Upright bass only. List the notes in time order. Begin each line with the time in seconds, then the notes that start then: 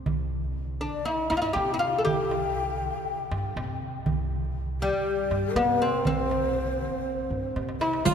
0.06 C2
1.31 G2
1.56 C3
2.05 C2
3.31 G2
3.56 C3
4.06 C2
5.31 G2
5.56 C3
6.06 C2
7.30 G2
7.56 C3
8.06 C3